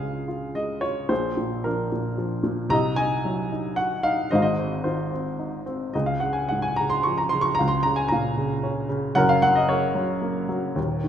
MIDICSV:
0, 0, Header, 1, 2, 480
1, 0, Start_track
1, 0, Key_signature, -5, "major"
1, 0, Tempo, 549954
1, 967, Time_signature, 3, 2, 24, 8
1, 1446, Tempo, 533333
1, 4806, Tempo, 557621
1, 6246, Tempo, 532387
1, 9872, End_track
2, 0, Start_track
2, 0, Title_t, "Grand piano"
2, 0, Program_c, 0, 0
2, 0, Control_c, 0, 64, 127
2, 0, Note_on_c, 0, 37, 56
2, 0, Note_on_c, 0, 49, 57
2, 0, Note_on_c, 0, 65, 47
2, 0, Note_on_c, 0, 68, 63
2, 0, Note_on_c, 0, 77, 82
2, 0, Note_on_c, 0, 80, 76
2, 5, Note_on_c, 0, 56, 40
2, 231, Note_off_c, 0, 65, 0
2, 244, Note_on_c, 0, 65, 41
2, 449, Note_off_c, 0, 68, 0
2, 450, Note_off_c, 0, 77, 0
2, 471, Note_off_c, 0, 56, 0
2, 481, Note_on_c, 0, 75, 72
2, 485, Note_on_c, 0, 56, 47
2, 700, Note_off_c, 0, 65, 0
2, 707, Note_on_c, 0, 73, 78
2, 713, Note_on_c, 0, 65, 50
2, 731, Note_off_c, 0, 75, 0
2, 934, Note_off_c, 0, 37, 0
2, 936, Note_off_c, 0, 49, 0
2, 949, Note_on_c, 0, 34, 57
2, 949, Note_on_c, 0, 46, 61
2, 951, Note_on_c, 0, 72, 77
2, 952, Note_off_c, 0, 56, 0
2, 953, Note_off_c, 0, 65, 0
2, 965, Note_off_c, 0, 73, 0
2, 966, Note_on_c, 0, 68, 55
2, 980, Control_c, 0, 64, 0
2, 988, Note_off_c, 0, 80, 0
2, 1116, Control_c, 0, 64, 127
2, 1183, Note_off_c, 0, 46, 0
2, 1196, Note_on_c, 0, 46, 47
2, 1432, Note_on_c, 0, 70, 71
2, 1444, Note_on_c, 0, 53, 44
2, 1450, Note_on_c, 0, 62, 46
2, 1452, Note_off_c, 0, 72, 0
2, 1650, Note_off_c, 0, 68, 0
2, 1670, Note_off_c, 0, 46, 0
2, 1683, Note_on_c, 0, 46, 47
2, 1901, Note_off_c, 0, 53, 0
2, 1914, Note_on_c, 0, 53, 55
2, 2115, Note_off_c, 0, 70, 0
2, 2124, Note_off_c, 0, 62, 0
2, 2131, Note_off_c, 0, 46, 0
2, 2145, Note_on_c, 0, 46, 58
2, 2351, Note_off_c, 0, 34, 0
2, 2378, Note_off_c, 0, 53, 0
2, 2380, Note_on_c, 0, 36, 68
2, 2383, Note_off_c, 0, 46, 0
2, 2386, Note_on_c, 0, 48, 73
2, 2386, Note_on_c, 0, 82, 99
2, 2400, Note_on_c, 0, 75, 77
2, 2408, Control_c, 0, 64, 0
2, 2553, Control_c, 0, 64, 127
2, 2614, Note_off_c, 0, 82, 0
2, 2622, Note_on_c, 0, 80, 101
2, 2626, Note_off_c, 0, 75, 0
2, 2631, Note_on_c, 0, 63, 58
2, 2640, Note_on_c, 0, 75, 65
2, 2880, Note_on_c, 0, 54, 49
2, 3108, Note_off_c, 0, 63, 0
2, 3122, Note_on_c, 0, 63, 50
2, 3315, Note_off_c, 0, 75, 0
2, 3341, Note_on_c, 0, 78, 92
2, 3360, Note_on_c, 0, 66, 61
2, 3364, Note_off_c, 0, 80, 0
2, 3581, Note_off_c, 0, 63, 0
2, 3585, Note_on_c, 0, 77, 99
2, 3590, Note_off_c, 0, 78, 0
2, 3594, Note_on_c, 0, 63, 65
2, 3787, Note_off_c, 0, 36, 0
2, 3789, Note_off_c, 0, 48, 0
2, 3804, Note_off_c, 0, 54, 0
2, 3813, Note_off_c, 0, 77, 0
2, 3822, Note_off_c, 0, 66, 0
2, 3827, Note_off_c, 0, 63, 0
2, 3831, Note_on_c, 0, 75, 83
2, 3840, Control_c, 0, 64, 0
2, 3841, Note_on_c, 0, 72, 59
2, 3848, Note_on_c, 0, 32, 66
2, 3852, Note_on_c, 0, 44, 70
2, 3872, Note_on_c, 0, 77, 74
2, 3895, Note_off_c, 0, 75, 0
2, 3934, Note_on_c, 0, 75, 83
2, 3944, Note_off_c, 0, 77, 0
2, 4019, Control_c, 0, 64, 127
2, 4084, Note_on_c, 0, 60, 48
2, 4297, Note_off_c, 0, 72, 0
2, 4311, Note_on_c, 0, 72, 63
2, 4318, Note_off_c, 0, 75, 0
2, 4319, Note_on_c, 0, 51, 42
2, 4321, Note_on_c, 0, 65, 50
2, 4548, Note_off_c, 0, 60, 0
2, 4561, Note_on_c, 0, 60, 44
2, 4804, Note_on_c, 0, 63, 50
2, 5005, Note_off_c, 0, 72, 0
2, 5010, Note_off_c, 0, 65, 0
2, 5026, Note_off_c, 0, 60, 0
2, 5039, Note_on_c, 0, 60, 45
2, 5255, Note_off_c, 0, 51, 0
2, 5256, Note_off_c, 0, 32, 0
2, 5258, Note_off_c, 0, 44, 0
2, 5268, Note_off_c, 0, 63, 0
2, 5274, Note_off_c, 0, 60, 0
2, 5275, Note_on_c, 0, 75, 67
2, 5289, Note_on_c, 0, 37, 62
2, 5292, Note_on_c, 0, 68, 47
2, 5294, Control_c, 0, 64, 0
2, 5385, Note_on_c, 0, 77, 69
2, 5403, Note_off_c, 0, 75, 0
2, 5435, Control_c, 0, 64, 127
2, 5504, Note_on_c, 0, 78, 73
2, 5519, Note_off_c, 0, 77, 0
2, 5531, Note_on_c, 0, 49, 43
2, 5613, Note_on_c, 0, 80, 70
2, 5640, Note_off_c, 0, 78, 0
2, 5749, Note_on_c, 0, 78, 78
2, 5755, Note_off_c, 0, 80, 0
2, 5770, Note_on_c, 0, 44, 45
2, 5867, Note_on_c, 0, 80, 84
2, 5870, Note_off_c, 0, 78, 0
2, 5979, Note_off_c, 0, 68, 0
2, 5988, Note_on_c, 0, 82, 85
2, 6002, Note_off_c, 0, 80, 0
2, 6003, Note_off_c, 0, 49, 0
2, 6016, Note_on_c, 0, 49, 45
2, 6102, Note_on_c, 0, 84, 88
2, 6108, Note_off_c, 0, 82, 0
2, 6220, Note_on_c, 0, 85, 87
2, 6222, Note_off_c, 0, 84, 0
2, 6250, Note_on_c, 0, 53, 48
2, 6347, Note_on_c, 0, 82, 83
2, 6357, Note_off_c, 0, 85, 0
2, 6454, Note_on_c, 0, 84, 89
2, 6481, Note_off_c, 0, 82, 0
2, 6482, Note_off_c, 0, 49, 0
2, 6495, Note_on_c, 0, 49, 56
2, 6562, Note_on_c, 0, 85, 93
2, 6594, Note_off_c, 0, 84, 0
2, 6682, Note_on_c, 0, 82, 99
2, 6693, Note_off_c, 0, 37, 0
2, 6698, Note_off_c, 0, 44, 0
2, 6707, Note_off_c, 0, 85, 0
2, 6714, Note_off_c, 0, 53, 0
2, 6721, Note_on_c, 0, 77, 68
2, 6723, Note_off_c, 0, 49, 0
2, 6734, Note_on_c, 0, 37, 69
2, 6738, Control_c, 0, 64, 0
2, 6800, Note_on_c, 0, 84, 88
2, 6827, Note_off_c, 0, 82, 0
2, 6880, Control_c, 0, 64, 127
2, 6936, Note_on_c, 0, 82, 91
2, 6944, Note_off_c, 0, 84, 0
2, 6961, Note_on_c, 0, 49, 51
2, 7055, Note_on_c, 0, 80, 89
2, 7072, Note_off_c, 0, 82, 0
2, 7167, Note_on_c, 0, 82, 88
2, 7190, Note_off_c, 0, 80, 0
2, 7193, Note_off_c, 0, 77, 0
2, 7199, Note_on_c, 0, 46, 51
2, 7207, Note_on_c, 0, 77, 62
2, 7415, Note_off_c, 0, 49, 0
2, 7429, Note_on_c, 0, 49, 57
2, 7661, Note_on_c, 0, 61, 60
2, 7851, Note_off_c, 0, 82, 0
2, 7871, Note_off_c, 0, 77, 0
2, 7879, Note_off_c, 0, 49, 0
2, 7893, Note_on_c, 0, 49, 69
2, 8112, Note_off_c, 0, 37, 0
2, 8116, Note_off_c, 0, 46, 0
2, 8126, Note_off_c, 0, 61, 0
2, 8128, Note_on_c, 0, 78, 102
2, 8132, Note_off_c, 0, 49, 0
2, 8132, Note_on_c, 0, 42, 81
2, 8133, Note_on_c, 0, 30, 76
2, 8148, Note_on_c, 0, 70, 85
2, 8154, Control_c, 0, 64, 0
2, 8249, Note_off_c, 0, 78, 0
2, 8255, Note_on_c, 0, 77, 98
2, 8327, Control_c, 0, 64, 127
2, 8374, Note_on_c, 0, 78, 100
2, 8376, Note_on_c, 0, 54, 58
2, 8384, Note_off_c, 0, 77, 0
2, 8493, Note_on_c, 0, 75, 90
2, 8503, Note_off_c, 0, 78, 0
2, 8610, Note_off_c, 0, 70, 0
2, 8611, Note_on_c, 0, 73, 85
2, 8621, Note_off_c, 0, 75, 0
2, 8621, Note_on_c, 0, 49, 47
2, 8624, Note_on_c, 0, 70, 58
2, 8834, Note_off_c, 0, 54, 0
2, 8848, Note_on_c, 0, 54, 50
2, 9088, Note_on_c, 0, 58, 53
2, 9320, Note_off_c, 0, 54, 0
2, 9334, Note_on_c, 0, 54, 57
2, 9553, Note_off_c, 0, 30, 0
2, 9553, Note_off_c, 0, 42, 0
2, 9564, Note_off_c, 0, 49, 0
2, 9572, Note_off_c, 0, 58, 0
2, 9576, Note_on_c, 0, 39, 64
2, 9580, Note_off_c, 0, 54, 0
2, 9581, Note_on_c, 0, 27, 63
2, 9607, Control_c, 0, 64, 0
2, 9772, Control_c, 0, 64, 127
2, 9830, Note_on_c, 0, 51, 46
2, 9872, Note_off_c, 0, 27, 0
2, 9872, Note_off_c, 0, 39, 0
2, 9872, Note_off_c, 0, 51, 0
2, 9872, Note_off_c, 0, 70, 0
2, 9872, Note_off_c, 0, 73, 0
2, 9872, End_track
0, 0, End_of_file